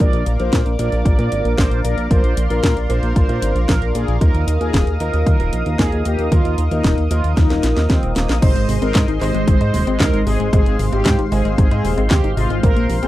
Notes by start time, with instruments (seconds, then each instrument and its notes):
Already playing: analog synth pad A#4
0.00 analog synth bass A#1, grand piano F3 A#3 D4 A#4, analog synth pad D5 F5 D6, analog polysynth D5, kick, closed hi-hat
0.13 analog synth bass A#1, closed hi-hat
0.26 analog synth bass A#1, closed hi-hat
0.40 analog synth bass A#1, grand piano F3 A#3 D4 A#4, analog polysynth C5, closed hi-hat
0.53 analog synth bass A#2, kick, snare, closed hi-hat
0.66 analog synth bass A#1, closed hi-hat
0.79 analog synth bass A#1, grand piano F3 A#3 D4 A#4, analog polysynth D5, closed hi-hat
0.92 analog synth bass A#1, closed hi-hat
1.05 analog synth bass A#1, analog polysynth D5, kick, closed hi-hat
1.19 analog synth bass A#2, grand piano F3 A#3 D4 A#4, closed hi-hat
1.32 analog synth bass G#1, closed hi-hat
1.45 analog synth bass A#1, closed hi-hat
1.58 analog synth bass A#1, grand piano F3 A#3 D4 A#4, analog polysynth C5, kick, snare, closed hi-hat
1.71 analog synth bass A#1, closed hi-hat
1.84 analog synth bass A#1, grand piano F3 A#3 D4 D5, analog polysynth A#4, closed hi-hat
1.97 analog synth bass A#1, closed hi-hat
2.11 analog synth bass A#1, grand piano F3 A#3 D4 A#4, analog polysynth C5, analog synth pad C6, kick, closed hi-hat
2.24 analog synth bass A#1, closed hi-hat
2.37 analog synth bass A#1, closed hi-hat
2.50 analog synth bass A#1, grand piano F3 A#3 D4 A#4, analog polysynth A#4, closed hi-hat
2.63 analog synth bass A#2, kick, snare, closed hi-hat
2.76 analog synth bass A#1, closed hi-hat
2.89 analog synth bass A#1, grand piano F3 A#3 D4 A#4, analog polysynth C5, closed hi-hat
3.03 analog synth bass A#1, closed hi-hat
3.16 analog synth bass A#1, analog polysynth C5, kick, closed hi-hat
3.29 analog synth bass A#2, grand piano F3 A#3 D4 A#4, closed hi-hat
3.42 analog synth bass G#1, closed hi-hat
3.55 analog synth bass A#1, closed hi-hat
3.68 analog synth bass A#1, grand piano F3 A#3 D4 A#4, analog polysynth A#4, kick, snare, closed hi-hat
3.81 analog synth bass A#1, closed hi-hat
3.95 analog synth bass A#1, grand piano F3 A#3 D4 D5, analog polysynth G#4, closed hi-hat
4.08 analog synth bass A#1, closed hi-hat
4.21 analog synth bass D#2, grand piano F3 A#3 D#4 A#4, analog polysynth A#4, analog synth pad D#5 D#6, kick, closed hi-hat
4.34 analog synth bass D#2, closed hi-hat
4.47 analog synth bass D#2, closed hi-hat
4.61 analog synth bass D#2, grand piano F3 A#3 D#4 A#4, analog polysynth G#4, closed hi-hat
4.74 analog synth bass D#1, kick, snare, closed hi-hat
4.87 analog synth bass D#2, closed hi-hat
5.00 analog synth bass D#2, grand piano F3 A#3 D#4 A#4, analog polysynth A#4, closed hi-hat
5.14 analog synth bass D#2, closed hi-hat
5.26 analog synth bass D#2, analog polysynth A#4, kick, closed hi-hat
5.40 analog synth bass D#1, grand piano F3 A#3 D#4 A#4, closed hi-hat
5.53 analog synth bass A#1, closed hi-hat
5.66 analog synth bass D#2, closed hi-hat
5.79 analog synth bass D#2, grand piano F3 A#3 D#4 A#4, analog polysynth G#4, kick, snare, closed hi-hat
5.92 analog synth bass D#2, closed hi-hat
6.05 analog synth bass D#2, grand piano F3 A#3 D#4 D#5, analog polysynth G4, closed hi-hat
6.19 analog synth bass D#2, closed hi-hat
6.32 analog synth bass D#2, grand piano F3 A#3 D#4 A#4, analog polysynth F4, kick, closed hi-hat
6.45 analog synth bass D#2, closed hi-hat
6.58 analog synth bass D#2, closed hi-hat
6.71 analog synth bass D#2, grand piano F3 A#3 D#4 A#4, analog polysynth D#4, closed hi-hat
6.84 analog synth bass D#1, kick, snare, closed hi-hat
6.98 analog synth bass D#2, closed hi-hat
7.11 analog synth bass D#2, grand piano F3 A#3 D#4 A#4, analog polysynth F4, closed hi-hat
7.24 analog synth bass D#2, closed hi-hat
7.37 analog synth bass D#2, analog polysynth D#4, kick, snare, closed hi-hat
7.50 analog synth bass D#1, grand piano F3 A#3 D#4 A#4, snare, closed hi-hat
7.63 analog synth bass A#1, snare, closed hi-hat
7.76 analog synth bass D#2, grand piano F3 A#3 D#4 A#4, snare, closed hi-hat
7.89 analog synth bass D#2, analog polysynth C4, kick, snare, closed hi-hat
8.03 analog synth bass D#1, closed hi-hat
8.16 analog synth bass D#1, grand piano F3 A#3 D#4 C5, analog polysynth A#3, snare, closed hi-hat
8.29 analog synth bass A#1, snare, closed hi-hat
8.42 analog synth bass G#1, synth arpeggio sound C3, analog synth pad G#3 C5 D#5 C6, grand piano G#3 C4 D#4 C5, analog polysynth C5, kick, closed hi-hat, crash
8.55 analog synth bass G#1, synth arpeggio sound G#3, closed hi-hat
8.68 analog synth bass G#1, synth arpeggio sound C3, open hi-hat
8.82 analog synth bass G#1, grand piano G#3 C4 D#4 C5, synth arpeggio sound C4, analog polysynth A#4, closed hi-hat
8.95 analog synth bass G#2, synth arpeggio sound C3, kick, snare, clap, closed hi-hat
9.08 analog synth bass G#1, synth arpeggio sound D#4, closed hi-hat
9.21 analog synth bass G#1, synth arpeggio sound C3, grand piano G#3 C4 D#4 C5, analog polysynth C5, clap, open hi-hat
9.34 analog synth bass G#1, synth arpeggio sound G#3, closed hi-hat
9.47 analog synth bass G#1, synth arpeggio sound C3, analog polysynth C5, kick, closed hi-hat
9.61 analog synth bass G#2, synth arpeggio sound G#3, grand piano G#3 C4 D#4 C5, closed hi-hat
9.74 analog synth bass D#1, synth arpeggio sound C3, open hi-hat
9.87 analog synth bass G#1, grand piano G#3 C4 D#4 C5, synth arpeggio sound C4, closed hi-hat
10.00 analog synth bass D#2, synth arpeggio sound C3, analog polysynth A#4, kick, snare, clap, closed hi-hat
10.13 analog synth bass G#1, synth arpeggio sound D#4, closed hi-hat
10.27 analog synth bass G#1, synth arpeggio sound C3, grand piano G#3 C4 D#4 D#5, analog polysynth G#4, open hi-hat
10.40 analog synth bass G#1, synth arpeggio sound G#3, closed hi-hat
10.53 analog synth bass G#1, synth arpeggio sound C3, grand piano G#3 C4 D#4 C5, analog polysynth G#4, analog synth pad F5, kick, closed hi-hat
10.66 analog synth bass G#1, synth arpeggio sound G#3, closed hi-hat
10.79 analog synth bass G#1, synth arpeggio sound C3, open hi-hat
10.92 analog synth bass G#1, grand piano G#3 C4 D#4 C5, synth arpeggio sound C4, analog polysynth G4, closed hi-hat
11.05 analog synth bass G#2, synth arpeggio sound C3, kick, snare, clap, closed hi-hat
11.19 analog synth bass G#1, synth arpeggio sound D#4, closed hi-hat
11.32 analog synth bass G#1, synth arpeggio sound C3, grand piano G#3 C4 D#4 C5, analog polysynth G#4, open hi-hat
11.45 analog synth bass G#1, synth arpeggio sound G#3, closed hi-hat
11.58 analog synth bass G#1, synth arpeggio sound C3, analog polysynth G#4, kick, closed hi-hat
11.71 analog synth bass G#2, synth arpeggio sound G#3, grand piano G#3 C4 D#4 C5, closed hi-hat
11.84 analog synth bass D#1, synth arpeggio sound C3, open hi-hat
11.97 analog synth bass G#1, grand piano G#3 C4 D#4 C5, synth arpeggio sound C4, closed hi-hat
12.11 analog synth bass D#2, synth arpeggio sound C3, analog polysynth G4, kick, snare, clap, closed hi-hat
12.24 analog synth bass G#1, synth arpeggio sound D#4, closed hi-hat
12.37 analog synth bass G#1, synth arpeggio sound C3, grand piano G#3 C4 D#4 D#5, analog polysynth F4, open hi-hat
12.50 analog synth bass G#1, synth arpeggio sound G#3, closed hi-hat
12.63 analog synth bass A#1, synth arpeggio sound C3, grand piano A#3 C4 F4 C5, analog polysynth A#4, analog synth pad A#4, kick, closed hi-hat
12.76 analog synth bass A#1, synth arpeggio sound A#3, closed hi-hat
12.89 analog synth bass A#1, synth arpeggio sound C3, open hi-hat
13.03 analog synth bass A#1, grand piano A#3 C4 F4 C5, synth arpeggio sound C4, analog polysynth G#4, closed hi-hat